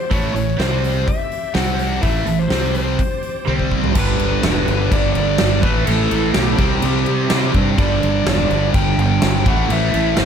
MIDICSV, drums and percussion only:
0, 0, Header, 1, 2, 480
1, 0, Start_track
1, 0, Tempo, 479616
1, 108, Time_signature, 4, 2, 24, 8
1, 10258, End_track
2, 0, Start_track
2, 0, Title_t, "Drums"
2, 113, Note_on_c, 9, 36, 94
2, 117, Note_on_c, 9, 46, 61
2, 213, Note_off_c, 9, 36, 0
2, 217, Note_off_c, 9, 46, 0
2, 357, Note_on_c, 9, 46, 46
2, 457, Note_off_c, 9, 46, 0
2, 598, Note_on_c, 9, 38, 120
2, 598, Note_on_c, 9, 46, 59
2, 698, Note_off_c, 9, 38, 0
2, 698, Note_off_c, 9, 46, 0
2, 841, Note_on_c, 9, 46, 44
2, 941, Note_off_c, 9, 46, 0
2, 1078, Note_on_c, 9, 36, 97
2, 1081, Note_on_c, 9, 46, 61
2, 1178, Note_off_c, 9, 36, 0
2, 1181, Note_off_c, 9, 46, 0
2, 1316, Note_on_c, 9, 46, 45
2, 1416, Note_off_c, 9, 46, 0
2, 1550, Note_on_c, 9, 38, 117
2, 1550, Note_on_c, 9, 46, 71
2, 1650, Note_off_c, 9, 38, 0
2, 1650, Note_off_c, 9, 46, 0
2, 1791, Note_on_c, 9, 46, 46
2, 1891, Note_off_c, 9, 46, 0
2, 2026, Note_on_c, 9, 46, 65
2, 2032, Note_on_c, 9, 36, 101
2, 2126, Note_off_c, 9, 46, 0
2, 2132, Note_off_c, 9, 36, 0
2, 2265, Note_on_c, 9, 46, 48
2, 2365, Note_off_c, 9, 46, 0
2, 2506, Note_on_c, 9, 38, 112
2, 2506, Note_on_c, 9, 46, 70
2, 2606, Note_off_c, 9, 38, 0
2, 2606, Note_off_c, 9, 46, 0
2, 2745, Note_on_c, 9, 46, 52
2, 2845, Note_off_c, 9, 46, 0
2, 2992, Note_on_c, 9, 46, 62
2, 2993, Note_on_c, 9, 36, 97
2, 3093, Note_off_c, 9, 36, 0
2, 3093, Note_off_c, 9, 46, 0
2, 3227, Note_on_c, 9, 46, 42
2, 3327, Note_off_c, 9, 46, 0
2, 3473, Note_on_c, 9, 48, 51
2, 3573, Note_off_c, 9, 48, 0
2, 3597, Note_on_c, 9, 36, 56
2, 3697, Note_off_c, 9, 36, 0
2, 3718, Note_on_c, 9, 36, 78
2, 3818, Note_off_c, 9, 36, 0
2, 3840, Note_on_c, 9, 43, 77
2, 3941, Note_off_c, 9, 43, 0
2, 3955, Note_on_c, 9, 49, 122
2, 3955, Note_on_c, 9, 57, 87
2, 3959, Note_on_c, 9, 36, 124
2, 4055, Note_off_c, 9, 49, 0
2, 4055, Note_off_c, 9, 57, 0
2, 4059, Note_off_c, 9, 36, 0
2, 4198, Note_on_c, 9, 57, 68
2, 4298, Note_off_c, 9, 57, 0
2, 4438, Note_on_c, 9, 38, 113
2, 4438, Note_on_c, 9, 57, 92
2, 4538, Note_off_c, 9, 38, 0
2, 4538, Note_off_c, 9, 57, 0
2, 4682, Note_on_c, 9, 57, 60
2, 4782, Note_off_c, 9, 57, 0
2, 4921, Note_on_c, 9, 36, 112
2, 4922, Note_on_c, 9, 57, 89
2, 5021, Note_off_c, 9, 36, 0
2, 5022, Note_off_c, 9, 57, 0
2, 5155, Note_on_c, 9, 57, 66
2, 5255, Note_off_c, 9, 57, 0
2, 5388, Note_on_c, 9, 38, 118
2, 5388, Note_on_c, 9, 57, 95
2, 5488, Note_off_c, 9, 38, 0
2, 5488, Note_off_c, 9, 57, 0
2, 5634, Note_on_c, 9, 57, 60
2, 5635, Note_on_c, 9, 36, 105
2, 5734, Note_off_c, 9, 57, 0
2, 5735, Note_off_c, 9, 36, 0
2, 5874, Note_on_c, 9, 57, 93
2, 5974, Note_off_c, 9, 57, 0
2, 6115, Note_on_c, 9, 57, 69
2, 6215, Note_off_c, 9, 57, 0
2, 6349, Note_on_c, 9, 38, 118
2, 6349, Note_on_c, 9, 57, 87
2, 6449, Note_off_c, 9, 38, 0
2, 6449, Note_off_c, 9, 57, 0
2, 6588, Note_on_c, 9, 57, 86
2, 6591, Note_on_c, 9, 36, 111
2, 6689, Note_off_c, 9, 57, 0
2, 6691, Note_off_c, 9, 36, 0
2, 6826, Note_on_c, 9, 57, 92
2, 6926, Note_off_c, 9, 57, 0
2, 7066, Note_on_c, 9, 57, 57
2, 7166, Note_off_c, 9, 57, 0
2, 7306, Note_on_c, 9, 38, 127
2, 7306, Note_on_c, 9, 57, 89
2, 7406, Note_off_c, 9, 38, 0
2, 7406, Note_off_c, 9, 57, 0
2, 7548, Note_on_c, 9, 57, 61
2, 7551, Note_on_c, 9, 36, 86
2, 7648, Note_off_c, 9, 57, 0
2, 7651, Note_off_c, 9, 36, 0
2, 7791, Note_on_c, 9, 36, 116
2, 7791, Note_on_c, 9, 57, 79
2, 7891, Note_off_c, 9, 36, 0
2, 7891, Note_off_c, 9, 57, 0
2, 8035, Note_on_c, 9, 57, 64
2, 8135, Note_off_c, 9, 57, 0
2, 8273, Note_on_c, 9, 38, 127
2, 8273, Note_on_c, 9, 57, 85
2, 8373, Note_off_c, 9, 38, 0
2, 8373, Note_off_c, 9, 57, 0
2, 8512, Note_on_c, 9, 57, 58
2, 8612, Note_off_c, 9, 57, 0
2, 8747, Note_on_c, 9, 57, 85
2, 8750, Note_on_c, 9, 36, 115
2, 8848, Note_off_c, 9, 57, 0
2, 8850, Note_off_c, 9, 36, 0
2, 8994, Note_on_c, 9, 57, 58
2, 9095, Note_off_c, 9, 57, 0
2, 9227, Note_on_c, 9, 38, 121
2, 9227, Note_on_c, 9, 57, 92
2, 9327, Note_off_c, 9, 38, 0
2, 9327, Note_off_c, 9, 57, 0
2, 9467, Note_on_c, 9, 57, 59
2, 9468, Note_on_c, 9, 36, 106
2, 9567, Note_off_c, 9, 57, 0
2, 9568, Note_off_c, 9, 36, 0
2, 9708, Note_on_c, 9, 57, 86
2, 9808, Note_off_c, 9, 57, 0
2, 9945, Note_on_c, 9, 57, 68
2, 10045, Note_off_c, 9, 57, 0
2, 10176, Note_on_c, 9, 38, 110
2, 10176, Note_on_c, 9, 57, 94
2, 10258, Note_off_c, 9, 38, 0
2, 10258, Note_off_c, 9, 57, 0
2, 10258, End_track
0, 0, End_of_file